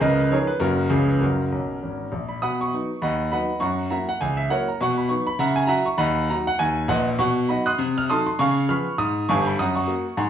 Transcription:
0.01 0.27 C#2 medium
0.01 0.27 C#3 loud
0.01 0.18 A#4 medium
0.01 0.18 B4 medium
0.01 0.20 D#5 loud
0.20 0.32 B4 medium
0.31 0.48 F3 soft
0.31 0.48 B3 soft
0.31 0.48 D#4 medium
0.31 0.49 G#4 medium
0.31 0.49 A#4 medium
0.31 0.50 C#5 medium
0.47 0.61 B4 medium
0.60 0.86 F#1 medium
0.60 0.86 F#2 medium
0.60 0.77 F#3 medium
0.60 0.77 A#3 medium
0.60 0.89 C#4 medium
0.60 0.89 F#4 medium
0.60 0.91 A#4 medium
0.90 1.16 C#2 medium
0.90 1.16 C#3 medium
0.90 1.07 F3 medium
0.90 1.07 B3 soft
0.90 1.08 C#4 medium
0.90 1.08 F4 medium
0.90 1.09 G#4 medium
1.08 1.21 B4 medium
1.21 1.45 F#1 medium
1.21 1.46 F#2 medium
1.21 2.08 C#4 medium
1.21 2.08 F#4 medium
1.21 2.11 A#4 medium
1.52 1.74 B1 medium
1.83 2.05 G#1 medium
2.12 2.34 A#1 medium
2.29 2.41 B5 medium
2.42 2.67 B2 medium
2.42 2.59 F#5 medium
2.42 2.59 B5 medium
2.42 2.60 D#6 medium
2.61 3.02 C#6 medium
2.73 2.89 F#3 soft
2.73 2.90 B3 soft
2.73 2.90 D#4 soft
3.02 3.27 D#2 medium
3.02 3.30 D#5 medium
3.02 3.30 F#5 medium
3.02 3.30 B5 medium
3.32 3.48 F#3 medium
3.32 3.48 B3 medium
3.32 3.49 D#4 medium
3.32 3.60 D#5 medium
3.32 3.60 F#5 medium
3.32 3.61 B5 medium
3.60 3.86 F#2 medium
3.60 3.89 F#5 medium
3.60 3.89 A#5 medium
3.60 3.90 C#6 medium
3.90 4.07 F#3 soft
3.90 4.07 A#3 soft
3.90 4.07 E4 medium
3.90 4.08 E5 medium
3.90 4.07 F#5 medium
3.90 4.08 A#5 medium
4.09 4.21 F#5 medium
4.21 4.46 C#2 medium
4.21 4.39 G#5 medium
4.37 4.50 E5 medium
4.50 4.66 F#3 soft
4.50 4.67 A#3 medium
4.50 4.67 E4 medium
4.50 4.68 A#4 medium
4.50 4.67 C#5 medium
4.50 4.68 F#5 medium
4.68 4.80 A#5 medium
4.81 5.06 B2 loud
4.81 4.98 F#5 medium
4.81 4.99 C#6 loud
4.97 5.10 B5 medium
5.09 5.26 F#3 soft
5.09 5.27 B3 medium
5.09 5.26 D#4 medium
5.09 5.27 C#6 medium
5.27 5.39 B5 loud
5.39 5.65 C#3 loud
5.39 5.57 E5 medium
5.39 5.57 F#5 medium
5.39 5.57 A#5 loud
5.56 5.69 G#5 loud
5.67 5.84 F#3 medium
5.67 5.85 E4 medium
5.67 5.85 F#4 medium
5.67 5.86 E5 medium
5.67 5.86 F#5 medium
5.67 5.86 A#5 loud
5.86 5.99 C#6 medium
5.98 6.24 D#2 loud
5.98 6.27 D#5 medium
5.98 6.27 F#5 medium
5.98 6.29 B5 loud
6.30 6.46 F#3 medium
6.30 6.46 D#4 medium
6.30 6.47 F#4 medium
6.30 6.48 A#5 loud
6.47 6.59 F#5 loud
6.59 6.85 D#2 medium
6.59 6.89 G#5 loud
6.88 7.13 A#1 medium
6.88 7.13 A#2 medium
6.88 7.06 B4 medium
6.88 7.06 D#5 medium
6.88 7.07 F#5 loud
7.19 7.44 B2 loud
7.19 7.47 F#5 medium
7.19 7.49 C#6 loud
7.49 7.65 F#3 medium
7.49 7.66 D#4 medium
7.49 7.66 F#4 medium
7.49 7.66 D#5 medium
7.49 7.66 F#5 medium
7.49 7.67 B5 medium
7.66 7.94 C6 medium
7.66 7.94 D#6 medium
7.66 7.96 F#6 loud
7.79 8.04 C3 loud
7.98 8.09 F6 loud
8.10 8.26 F#3 medium
8.10 8.26 D#4 medium
8.10 8.26 A4 medium
8.10 8.26 A5 medium
8.10 8.25 C6 loud
8.10 8.27 D#6 loud
8.27 8.39 C6 medium
8.39 8.64 C#3 loud
8.39 8.68 F5 medium
8.39 8.67 G#5 medium
8.39 8.69 C#6 loud
8.69 8.85 F3 medium
8.69 8.85 B3 medium
8.69 8.86 G#4 medium
8.69 8.97 B5 medium
8.69 8.97 C#6 medium
8.69 8.99 F6 loud
8.98 9.24 G#2 medium
8.98 9.28 D#6 loud
9.29 9.52 G1 medium
9.29 9.53 G2 loud
9.29 9.46 F5 medium
9.29 9.46 G#5 loud
9.29 9.46 C#6 loud
9.46 9.58 B5 medium
9.59 9.84 F#2 medium
9.59 9.75 F#5 medium
9.59 9.75 A#5 medium
9.59 9.77 D#6 loud
9.75 10.15 F#5 medium
9.75 10.15 A#5 medium
9.75 10.18 C#6 medium
9.87 10.03 F#3 soft
9.87 10.04 A#3 medium
9.87 10.04 F#4 medium
10.17 10.30 G#2 medium
10.17 10.30 F#5 medium
10.17 10.30 G#5 medium
10.17 10.30 C6 medium

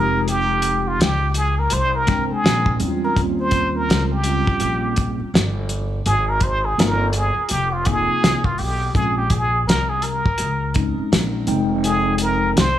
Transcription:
0.00 0.96 F1 loud
0.00 1.08 G#3 medium
0.00 1.08 C4 medium
0.00 1.08 D#4 medium
0.00 1.09 G4 medium
0.00 0.28 A#4 loud
0.28 0.89 G4 medium
0.28 closed hi-hat medium
0.62 closed hi-hat medium
0.88 1.01 F4 medium
1.00 1.68 C#2 medium
1.00 1.35 G4 medium
1.00 snare loud
1.00 closed hi-hat medium
1.34 1.61 G#4 medium
1.34 closed hi-hat medium
1.59 1.74 A#4 medium
1.70 2.27 C2 loud
1.70 1.97 C5 medium
1.70 closed hi-hat medium
1.96 2.34 A#4 medium
2.07 3.10 G#3 medium
2.07 2.79 C4 medium
2.07 3.11 D4 medium
2.07 3.11 G5 medium
2.07 kick medium
2.07 snare soft
2.07 closed hi-hat medium
2.30 2.74 G#4 medium
2.30 muted upright bass stroke medium
2.44 2.78 A#1 medium
2.44 snare loud
2.44 closed hi-hat medium
2.66 kick medium
2.79 3.15 E2 medium
2.79 3.14 G3 medium
2.79 3.15 C4 medium
2.79 3.15 C#4 medium
2.79 2.89 E4 medium
2.79 closed hi-hat medium
2.87 3.16 F4 medium
3.04 3.20 A#4 medium
3.15 3.85 D#2 medium
3.15 4.19 G3 medium
3.15 4.19 C4 medium
3.15 4.19 C#4 medium
3.15 4.20 F4 medium
3.15 kick loud
3.15 closed hi-hat medium
3.40 3.77 C5 medium
3.51 kick medium
3.51 closed hi-hat medium
3.76 4.14 A#4 medium
3.89 4.44 C#2 medium
3.89 snare loud
3.89 closed hi-hat medium
4.12 5.20 G4 medium
4.24 5.28 G3 medium
4.24 5.28 C4 medium
4.24 5.28 C#4 medium
4.24 5.28 F4 medium
4.24 closed hi-hat medium
4.47 muted upright bass stroke soft
4.47 kick medium
4.60 5.17 A#1 medium
4.60 closed hi-hat medium
4.96 kick medium
4.96 closed hi-hat medium
5.20 muted upright bass stroke medium
5.34 6.02 G1 loud
5.34 snare loud
5.34 closed hi-hat medium
5.69 closed hi-hat medium
6.06 6.75 G#1 loud
6.06 6.31 G#4 medium
6.06 closed hi-hat medium
6.29 6.45 A#4 loud
6.41 6.67 C5 loud
6.41 kick medium
6.41 closed hi-hat medium
6.65 6.82 G#4 loud
6.78 7.34 G1 medium
6.78 7.06 A#3 medium
6.78 7.06 C4 medium
6.78 7.06 D#4 medium
6.78 7.06 F4 medium
6.78 7.14 A#4 loud
6.78 snare loud
6.78 closed hi-hat medium
7.13 7.52 G#4 medium
7.13 closed hi-hat medium
7.37 muted upright bass stroke soft
7.49 8.06 F1 medium
7.49 7.74 G4 medium
7.49 closed hi-hat medium
7.72 7.88 F4 medium
7.85 8.40 A#3 medium
7.85 8.40 C4 medium
7.85 8.41 D#4 medium
7.85 8.41 F4 medium
7.85 8.46 G#4 loud
7.85 kick medium
7.85 closed hi-hat medium
8.09 muted upright bass stroke soft
8.23 8.57 C2 medium
8.23 snare loud
8.23 closed hi-hat loud
8.44 8.60 F4 medium
8.44 kick medium
8.58 8.94 B1 medium
8.58 8.94 G4 medium
8.58 open hi-hat soft
8.94 9.64 A#1 loud
8.94 9.22 G#3 medium
8.94 9.23 C4 medium
8.94 9.23 C#4 medium
8.94 9.23 F4 medium
8.94 9.15 G#4 medium
8.94 kick loud
8.94 closed hi-hat medium
9.17 9.33 G4 medium
9.30 9.66 G#4 medium
9.30 kick medium
9.30 closed hi-hat medium
9.67 10.23 C2 medium
9.67 9.91 A#4 medium
9.67 snare loud
9.67 closed hi-hat medium
9.89 10.04 G#4 medium
10.02 10.75 A#4 medium
10.02 closed hi-hat medium
10.26 muted upright bass stroke soft
10.26 kick loud
10.38 10.95 C#2 medium
10.38 closed hi-hat medium
10.74 11.45 G#3 medium
10.74 11.46 C4 medium
10.74 11.48 C#4 medium
10.74 11.46 D#4 medium
10.74 kick medium
10.74 closed hi-hat medium
10.98 muted upright bass stroke soft
11.12 11.46 A#1 medium
11.12 snare loud
11.12 closed hi-hat loud
11.46 12.52 F1 loud
11.46 12.64 G#3 loud
11.46 12.65 C4 medium
11.46 12.65 D#4 medium
11.46 12.65 G5 loud
11.46 closed hi-hat medium
11.84 12.23 G#4 medium
11.84 closed hi-hat medium
12.18 12.59 A#4 medium
12.18 closed hi-hat medium
12.57 12.79 C2 loud
12.57 12.79 C5 loud
12.57 snare loud
12.57 closed hi-hat medium

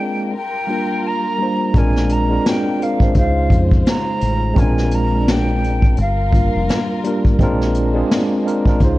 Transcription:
0.00 0.20 G#3 loud
0.00 0.31 G#3 medium
0.00 0.32 A#3 medium
0.00 0.21 C4 medium
0.00 0.21 D4 medium
0.00 0.32 D4 medium
0.00 0.22 F4 medium
0.00 0.22 A#4 loud
0.00 0.35 G5 loud
0.33 1.73 G3 medium
0.33 1.73 F4 medium
0.33 1.73 A#4 medium
0.33 1.09 G5 loud
0.67 1.32 G3 medium
0.67 1.33 A#3 medium
0.67 1.33 D4 medium
0.67 1.34 F4 medium
0.67 1.34 A#4 medium
1.07 1.79 A#5 loud
1.38 1.71 G3 medium
1.38 1.72 A#3 medium
1.38 1.72 D4 medium
1.38 1.72 F4 medium
1.42 1.73 C5 medium
1.74 2.37 A#1 loud
1.74 3.14 G#3 medium
1.74 2.24 G#3 loud
1.74 3.14 A#3 medium
1.74 2.24 C4 medium
1.74 3.14 D4 medium
1.74 2.25 D4 medium
1.74 2.25 F4 medium
1.74 kick loud
1.74 closed hi-hat medium
1.78 2.26 A#4 loud
1.78 2.14 G#5 loud
1.96 snare soft
2.09 2.49 A#5 loud
2.09 closed hi-hat medium
2.29 2.75 G#3 medium
2.29 2.75 C4 medium
2.29 2.76 D4 medium
2.29 2.76 F4 medium
2.29 2.77 A#4 medium
2.46 2.85 G5 loud
2.46 snare loud
2.46 closed hi-hat medium
2.79 2.98 G#3 medium
2.79 2.99 C4 medium
2.79 2.99 D4 medium
2.79 3.00 F4 medium
2.79 3.00 A#4 medium
2.79 3.17 F5 medium
2.79 closed hi-hat medium
2.99 3.14 G#3 medium
2.99 3.15 C4 medium
2.99 3.16 D4 medium
2.99 3.16 F4 medium
2.99 3.17 C5 medium
2.99 kick loud
3.14 3.47 C#2 loud
3.14 4.55 C#3 medium
3.14 4.44 G#3 medium
3.14 4.45 C#4 medium
3.14 4.45 D#4 medium
3.14 4.55 F4 medium
3.14 4.46 F4 medium
3.14 4.55 C5 medium
3.14 3.59 F5 medium
3.14 kick medium
3.14 closed hi-hat medium
3.19 4.46 C5 medium
3.50 3.82 F2 medium
3.50 kick loud
3.50 closed hi-hat medium
3.71 kick medium
3.86 4.61 A#5 loud
3.86 snare loud
3.86 closed hi-hat medium
4.21 4.53 A1 medium
4.21 closed hi-hat medium
4.53 5.94 A#1 loud
4.53 5.84 G#3 medium
4.53 5.96 G#3 medium
4.53 5.96 A#3 medium
4.53 5.85 C4 loud
4.53 4.64 C#4 medium
4.53 5.96 D4 medium
4.53 5.86 F4 loud
4.53 kick loud
4.53 closed hi-hat medium
4.57 5.86 A#4 loud
4.57 4.96 G#5 loud
4.62 5.89 D4 medium
4.78 snare soft
4.91 5.32 A#5 medium
4.91 closed hi-hat medium
5.28 5.99 G5 medium
5.28 snare loud
5.28 closed hi-hat medium
5.64 closed hi-hat medium
5.82 kick medium
5.97 6.48 G1 loud
5.97 7.38 G3 medium
5.97 7.38 F4 medium
5.97 7.38 A#4 medium
5.97 7.01 F5 medium
5.97 closed hi-hat medium
6.31 6.97 G3 medium
6.31 6.97 A#3 medium
6.31 6.97 D4 medium
6.31 6.98 F4 medium
6.31 6.98 A#4 medium
6.31 kick loud
6.31 closed hi-hat medium
6.55 6.67 F1 medium
6.69 snare loud
6.69 closed hi-hat medium
7.04 7.36 G3 medium
7.04 7.36 A#3 medium
7.04 7.37 D4 medium
7.04 7.37 F4 medium
7.04 7.38 A#4 medium
7.04 closed hi-hat medium
7.25 kick medium
7.39 8.02 A#1 loud
7.39 8.79 G#3 medium
7.39 7.89 G#3 loud
7.39 8.79 A#3 medium
7.39 7.89 C4 loud
7.39 8.79 D4 medium
7.39 7.90 D4 loud
7.39 7.90 F4 loud
7.39 kick loud
7.39 closed hi-hat medium
7.43 7.91 A#4 loud
7.61 snare soft
7.74 closed hi-hat medium
7.93 8.40 G#3 medium
7.93 8.40 C4 medium
7.93 8.40 D4 medium
7.93 8.41 F4 medium
7.93 8.41 G#4 loud
8.11 snare loud
8.11 closed hi-hat medium
8.44 8.63 G#3 medium
8.44 8.63 C4 medium
8.44 8.64 D4 medium
8.44 8.64 F4 medium
8.44 8.65 A#4 medium
8.44 closed hi-hat medium
8.65 8.79 G#3 medium
8.65 8.80 C4 medium
8.65 8.81 D4 medium
8.65 8.81 F4 medium
8.65 kick medium
8.69 8.82 A#4 loud
8.80 8.98 C#2 loud
8.80 8.98 C#3 medium
8.80 8.98 G#3 medium
8.80 8.98 C#4 medium
8.80 8.98 D#4 medium
8.80 8.98 F4 medium
8.80 8.98 C5 medium
8.80 kick medium
8.80 closed hi-hat medium
8.84 8.98 C5 medium

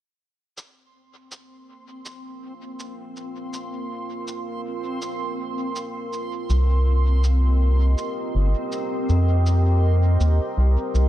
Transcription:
0.57 8.18 A#3 medium
0.57 11.09 C4 medium
0.57 11.09 C6 medium
0.57 cabasa soft
0.69 11.09 A#4 medium
1.05 8.71 F4 medium
1.31 6.50 F5 medium
1.31 cabasa soft
2.05 cabasa soft
2.79 cabasa soft
3.16 cabasa soft
3.53 cabasa soft
4.28 cabasa soft
5.02 cabasa soft
5.76 cabasa soft
6.13 cabasa soft
6.50 7.95 C2 medium
6.50 11.09 C4 medium
6.50 cabasa soft
6.72 11.09 G4 medium
6.72 11.09 D#5 medium
7.24 cabasa soft
7.98 cabasa soft
8.35 8.55 G1 loud
8.72 cabasa soft
9.09 10.18 F2 loud
9.09 cabasa soft
9.46 cabasa soft
10.20 10.40 D#2 medium
10.20 cabasa soft
10.58 10.77 C2 medium
10.94 11.09 C2 medium
10.94 cabasa soft

